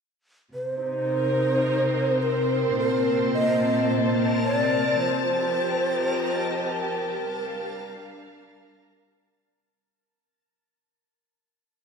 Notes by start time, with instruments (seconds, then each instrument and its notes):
0.52 string section C3, synth drone C3 C4, synth texture A#4 A5, shakuhachi C5
0.74 string section C4
0.79 string section D#4
1.03 string section A#4
1.54 string section C5
2.22 shakuhachi A#4
2.76 string section A#2, shakuhachi A#4
2.91 string section A#3
3.34 shakuhachi D#5
3.58 string section A5
4.45 shakuhachi C#5
4.57 shakuhachi D5
5.00 string section F3, shakuhachi C5
5.37 string section G4
5.99 string section D#5
6.67 shakuhachi C5
6.72 shakuhachi A#4
7.23 string section G3
7.47 string section F5
7.54 string section D4
8.21 string section A#4